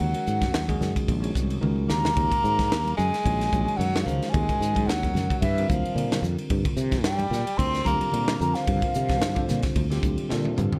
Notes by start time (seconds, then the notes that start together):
Already playing: F#3 C#4 F#4 A#4 F#5
0.00 D#2, low conga
0.14 D#3 G#3 C#4 F#4 A#4, ride
0.27 G#2, hi-hat pedal
0.42 kick, snare, ride, high conga
0.54 D#2, snare, ride
0.68 D#3 G#3 C#4 F#4 G#4, kick, ride, high conga
0.81 F#2, snare, hi-hat pedal, high conga, low conga
0.96 kick, ride
1.08 A#1, kick, ride
1.21 D#3 G#3 C#4 F#4 C#5, ride
1.35 C2, kick, hi-hat pedal, high conga
1.50 ride
1.61 C#2 D#3 G#3 C#4 F#4 A#4, high tom, low conga
1.76 high conga
1.89 D#2 A#3 A#5, snare, hi-hat pedal, low conga
2.04 snare, low conga
2.16 D#2, kick, ride, low conga
2.32 kick, ride
2.44 G#2, hi-hat pedal
2.59 kick, snare, ride, high conga
2.71 D#2, snare, ride
2.85 ride, high conga
2.97 F#2 G#3 G#5, hi-hat pedal, high conga, low conga
3.14 snare, ride
3.24 A#1 D#3 G#3 C#4 F#4 C#5, kick, ride
3.41 snare, ride
3.51 A#1 D#3 G#3 C#4 F#4 C#5, kick, hi-hat pedal, high conga
3.68 muted fretless electric bass stroke, ride
3.77 F#2 D#3 F#3 G#3 C#4 F#4 A#4 F#5, ride, low conga
3.94 snare, ride, high conga
4.02 D#3 F3 F5, low conga
4.07 C#2 G#3 C#4 F#4 A#4, hi-hat pedal
4.22 snare, ride
4.29 G#3 G#5
4.34 D#2, kick, ride, low conga
4.49 D#3 G#3 C#4 F#4 A#4, kick, ride
4.60 G#2, hi-hat pedal
4.75 kick, ride, high conga
4.87 D#2 F#3 F#5, snare, ride
5.03 D#3 G#3 C#4 F#4 A#4, kick, ride, high conga
5.14 F#2, snare, hi-hat pedal, high conga, low conga
5.30 kick, ride
5.41 G2 E3 E5, kick, ride
5.58 D3 G3 C4 F4 A#4, ride
5.69 D2 F3 F5, kick, hi-hat pedal, high conga
5.84 muted fretless electric bass stroke, ride
5.95 A#2 D3 G3 C4 F4, ride, low conga
6.00 A#4
6.11 snare, ride, high conga
6.22 F2, hi-hat pedal, low conga
6.38 ride
6.50 G2, kick, ride, low conga
6.65 kick, ride
6.77 C3, hi-hat pedal
6.91 kick, snare, ride, high conga
7.04 G2 G3 G5, snare, ride
7.19 ride, high conga
7.30 A#2, snare, hi-hat pedal, high conga, low conga
7.47 ride
7.57 D2 D3 G3 C4 F4 A#4 C6, kick, ride
7.74 snare, ride
7.85 D2 D3 G3 A#3 C4 F4 G4 A#5, kick, hi-hat pedal, high conga
8.01 muted fretless electric bass stroke, ride
8.12 A#2 D3 G3 C4 F4 A#4, ride, low conga
8.27 snare, ride, high conga
8.40 F2 D3 G3 A#3 C4 F4 A#4 A#5, hi-hat pedal, low conga
8.55 F3 F5, snare, ride
8.67 G2, kick, ride, low conga
8.82 D3 G3 C4 F4 A#4, kick, ride
8.94 C3, hi-hat pedal
9.09 kick, snare, ride, high conga
9.21 G2, snare, ride
9.35 D3 G3 C4 F4 C5, kick, ride, high conga
9.48 A#2, snare, hi-hat pedal, high conga, low conga
9.62 kick, snare, ride
9.76 D2, kick, ride
9.90 D3 G3 C4 F4 G4, snare, ride
10.03 D2, kick, hi-hat pedal, high conga
10.18 muted fretless electric bass stroke, ride
10.28 A#2 D3 G3 C4 F4 A4 C5, snare, low conga
10.44 E5, high tom, high conga
10.56 G2 F5, hi-hat pedal, mid tom, low conga
10.73 floor tom